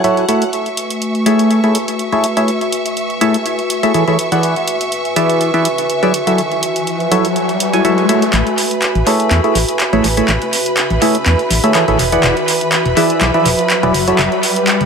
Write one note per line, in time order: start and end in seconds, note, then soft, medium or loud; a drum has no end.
0.00 14.85 F#4 medium
0.00 14.85 B4 medium
0.00 14.85 E5 medium
0.00 0.54 F#5 medium
0.00 14.85 G#5 medium
0.00 0.54 F#6 medium
0.04 0.25 F#3 loud
0.04 0.25 E4 medium
0.04 0.25 F#4 medium
0.04 0.25 A4 medium
0.04 0.25 C#5 medium
0.04 0.25 E5 loud
0.04 closed hi-hat soft
0.17 closed hi-hat soft
0.29 0.44 A3 medium
0.29 0.44 E4 medium
0.29 0.44 F#4 medium
0.29 0.44 A4 medium
0.29 0.44 C#5 medium
0.29 0.44 E5 medium
0.29 closed hi-hat medium
0.42 closed hi-hat soft
0.53 4.19 A3 medium
0.53 8.34 E5 medium
0.53 8.34 C#6 medium
0.53 closed hi-hat soft
0.66 closed hi-hat soft
0.77 closed hi-hat medium
0.90 closed hi-hat soft
1.02 closed hi-hat soft
1.15 closed hi-hat soft
1.26 1.60 A3 medium
1.26 1.60 E4 medium
1.26 1.60 G#4 medium
1.26 1.60 A4 medium
1.26 1.60 C#5 medium
1.26 1.60 E5 loud
1.26 closed hi-hat medium
1.39 closed hi-hat soft
1.51 closed hi-hat soft
1.64 1.77 A3 medium
1.64 1.77 E4 medium
1.64 1.77 G#4 medium
1.64 1.77 A4 medium
1.64 1.77 C#5 medium
1.64 1.77 E5 medium
1.64 closed hi-hat soft
1.75 closed hi-hat medium
1.88 closed hi-hat soft
1.99 closed hi-hat soft
2.12 2.26 A3 medium
2.12 2.26 E4 medium
2.12 2.26 G#4 medium
2.12 2.26 A4 medium
2.12 2.26 C#5 medium
2.12 2.26 E5 loud
2.12 closed hi-hat soft
2.24 closed hi-hat medium
2.37 2.50 A3 medium
2.37 2.50 E4 medium
2.37 2.50 G#4 medium
2.37 2.50 A4 medium
2.37 2.50 C#5 medium
2.37 2.50 E5 medium
2.37 closed hi-hat soft
2.48 closed hi-hat soft
2.61 closed hi-hat soft
2.72 closed hi-hat medium
2.86 closed hi-hat soft
2.97 closed hi-hat soft
3.10 closed hi-hat soft
3.21 3.36 A3 loud
3.21 3.36 E4 medium
3.21 3.36 G#4 medium
3.21 3.36 A4 medium
3.21 3.36 C#5 medium
3.21 3.36 E5 loud
3.21 closed hi-hat medium
3.34 closed hi-hat soft
3.46 closed hi-hat soft
3.59 closed hi-hat soft
3.70 closed hi-hat medium
3.83 3.93 A3 medium
3.83 3.93 E4 medium
3.83 3.93 G#4 medium
3.83 3.93 A4 medium
3.83 3.93 C#5 medium
3.83 3.93 E5 loud
3.83 closed hi-hat soft
3.94 4.04 E3 medium
3.94 4.04 E4 medium
3.94 4.04 G#4 medium
3.94 4.04 A4 medium
3.94 4.04 C#5 medium
3.94 4.04 E5 loud
3.94 closed hi-hat soft
4.08 4.17 E3 medium
4.08 4.17 E4 medium
4.08 4.17 G#4 medium
4.08 4.17 A4 medium
4.08 4.17 C#5 medium
4.08 4.17 E5 medium
4.08 closed hi-hat soft
4.19 closed hi-hat medium
4.32 4.55 E3 medium
4.32 4.55 E4 medium
4.32 4.55 G#4 medium
4.32 4.55 B4 medium
4.32 4.55 D5 medium
4.32 4.55 F#5 medium
4.32 closed hi-hat soft
4.43 closed hi-hat soft
4.43 riser medium
4.56 closed hi-hat soft
4.68 closed hi-hat medium
4.81 closed hi-hat soft
4.92 closed hi-hat medium
5.05 closed hi-hat soft
5.16 5.51 E3 medium
5.16 5.51 E4 medium
5.16 5.51 G#4 medium
5.16 5.51 B4 medium
5.16 5.51 D5 medium
5.16 5.51 E5 loud
5.16 closed hi-hat medium
5.30 closed hi-hat soft
5.41 closed hi-hat soft
5.54 5.67 E3 medium
5.54 5.67 E4 medium
5.54 5.67 G#4 medium
5.54 5.67 B4 medium
5.54 5.67 D5 medium
5.54 5.67 E5 medium
5.54 closed hi-hat soft
5.65 closed hi-hat medium
5.78 closed hi-hat soft
5.90 closed hi-hat soft
6.03 6.13 F#3 medium
6.03 6.13 E4 medium
6.03 6.13 G#4 medium
6.03 6.13 B4 medium
6.03 6.13 D5 medium
6.03 6.13 E5 loud
6.03 closed hi-hat soft
6.14 closed hi-hat medium
6.27 6.41 F#3 medium
6.27 6.41 E4 medium
6.27 6.41 F#4 medium
6.27 6.41 A4 medium
6.27 6.41 C#5 medium
6.27 6.41 E5 medium
6.27 closed hi-hat soft
6.38 closed hi-hat medium
6.52 closed hi-hat soft
6.63 closed hi-hat medium
6.76 closed hi-hat medium
6.87 closed hi-hat medium
7.00 closed hi-hat soft
7.11 7.27 F#3 loud
7.11 7.27 E4 medium
7.11 7.27 F#4 medium
7.11 7.27 A4 medium
7.11 7.27 C#5 medium
7.11 7.27 E5 loud
7.11 closed hi-hat medium
7.25 closed hi-hat soft
7.36 closed hi-hat soft
7.49 closed hi-hat soft
7.60 closed hi-hat medium
7.73 7.83 F#3 medium
7.73 7.83 E4 medium
7.73 7.83 F#4 medium
7.73 7.83 A4 medium
7.73 7.83 C#5 medium
7.73 7.83 G#5 medium
7.73 closed hi-hat soft
7.85 8.06 F#3 loud
7.85 8.06 E4 medium
7.85 8.06 F#4 medium
7.85 8.06 A4 medium
7.85 8.06 C#5 medium
7.85 8.06 E5 loud
7.85 closed hi-hat soft
7.98 closed hi-hat soft
8.09 8.24 A3 medium
8.09 8.24 E4 medium
8.09 8.24 F#4 medium
8.09 8.24 A4 medium
8.09 8.24 C#5 medium
8.09 8.24 E5 medium
8.09 closed hi-hat medium
8.22 closed hi-hat soft
8.33 8.42 A1 loud
8.33 14.85 B4 medium
8.33 14.85 B5 medium
8.33 clap soft
8.33 closed hi-hat medium
8.33 riser medium
8.47 closed hi-hat soft
8.58 open hi-hat loud
8.71 closed hi-hat medium
8.82 clap soft
8.82 closed hi-hat medium
8.95 9.03 A1 medium
8.95 closed hi-hat soft
9.07 9.41 A3 medium
9.07 9.41 E4 medium
9.07 9.41 G#4 medium
9.07 9.41 A4 medium
9.07 9.41 C#5 medium
9.07 9.41 E5 loud
9.07 open hi-hat medium
9.20 closed hi-hat medium
9.31 9.40 E2 medium
9.31 clap soft
9.31 closed hi-hat medium
9.44 9.58 A3 medium
9.44 9.58 E4 medium
9.44 9.58 G#4 medium
9.44 9.58 A4 medium
9.44 9.58 C#5 medium
9.44 9.58 E5 medium
9.44 closed hi-hat soft
9.55 9.64 A1 loud
9.55 open hi-hat loud
9.69 closed hi-hat medium
9.80 clap soft
9.80 closed hi-hat soft
9.93 10.01 A1 medium
9.93 10.07 A3 medium
9.93 10.07 E4 medium
9.93 10.07 G#4 medium
9.93 10.06 A4 medium
9.93 10.07 C#5 medium
9.93 10.07 E5 loud
9.93 closed hi-hat soft
10.04 10.21 A1 medium
10.04 open hi-hat medium
10.17 10.31 A3 medium
10.17 10.31 E4 medium
10.17 10.31 G#4 medium
10.17 10.31 A4 medium
10.17 10.31 C#5 medium
10.17 10.31 E5 medium
10.17 closed hi-hat medium
10.28 10.37 A1 medium
10.28 clap medium
10.28 closed hi-hat medium
10.42 closed hi-hat soft
10.53 open hi-hat loud
10.66 closed hi-hat soft
10.77 clap medium
10.77 closed hi-hat medium
10.90 10.98 A1 medium
10.90 closed hi-hat soft
11.02 11.17 A3 loud
11.02 11.17 E4 medium
11.02 11.17 G#4 medium
11.02 11.17 A4 medium
11.02 11.17 C#5 medium
11.02 11.17 E5 loud
11.02 open hi-hat medium
11.15 closed hi-hat soft
11.26 11.35 E2 medium
11.26 clap medium
11.26 closed hi-hat soft
11.39 closed hi-hat soft
11.50 11.59 A1 loud
11.50 open hi-hat loud
11.64 11.73 A3 medium
11.64 11.73 E4 medium
11.64 11.73 G#4 medium
11.64 11.73 A4 medium
11.64 11.73 C#5 medium
11.64 11.73 E5 loud
11.64 closed hi-hat soft
11.75 11.85 E3 medium
11.75 11.85 E4 medium
11.75 11.85 G#4 medium
11.75 11.85 A4 medium
11.75 11.85 C#5 medium
11.75 11.85 E5 loud
11.75 clap medium
11.75 closed hi-hat soft
11.88 11.96 A1 medium
11.88 11.98 E3 medium
11.88 11.98 E4 medium
11.88 11.98 G#4 medium
11.88 11.98 A4 medium
11.88 11.98 C#5 medium
11.88 11.98 E5 loud
11.88 closed hi-hat soft
11.99 12.16 E1 medium
11.99 open hi-hat medium
12.12 12.35 E3 medium
12.12 12.35 E4 medium
12.12 12.35 G#4 medium
12.12 12.35 B4 medium
12.12 12.35 D5 medium
12.12 12.35 F#5 medium
12.12 closed hi-hat medium
12.24 12.33 E1 loud
12.24 clap medium
12.24 closed hi-hat soft
12.37 closed hi-hat soft
12.48 open hi-hat loud
12.61 closed hi-hat soft
12.72 clap medium
12.72 closed hi-hat soft
12.86 12.93 E1 medium
12.86 closed hi-hat soft
12.97 13.31 E3 medium
12.97 13.31 E4 medium
12.97 13.31 G#4 medium
12.97 13.31 B4 medium
12.97 13.31 D5 medium
12.97 13.31 E5 loud
12.97 open hi-hat medium
13.10 closed hi-hat soft
13.21 13.30 B1 medium
13.21 clap medium
13.21 closed hi-hat soft
13.34 13.48 E3 medium
13.34 13.48 E4 medium
13.34 13.48 G#4 medium
13.34 13.48 B4 medium
13.34 13.48 D5 medium
13.34 13.48 E5 medium
13.34 closed hi-hat soft
13.46 13.55 E1 loud
13.46 open hi-hat loud
13.59 closed hi-hat soft
13.70 clap medium
13.70 closed hi-hat soft
13.83 13.91 E1 medium
13.83 13.93 F#3 medium
13.83 13.93 E4 medium
13.83 13.93 G#4 medium
13.83 13.93 B4 medium
13.83 13.93 D5 medium
13.83 13.93 E5 loud
13.83 closed hi-hat soft
13.94 14.12 F#1 medium
13.94 open hi-hat medium
14.08 14.21 F#3 medium
14.08 14.21 E4 medium
14.08 14.21 F#4 medium
14.08 14.21 A4 medium
14.08 14.21 C#5 medium
14.08 14.21 E5 medium
14.08 closed hi-hat soft
14.19 14.28 F#1 loud
14.19 clap medium
14.19 closed hi-hat soft
14.32 closed hi-hat soft
14.43 open hi-hat loud
14.56 closed hi-hat soft
14.68 clap medium
14.68 closed hi-hat medium
14.81 14.85 F#1 medium
14.81 closed hi-hat soft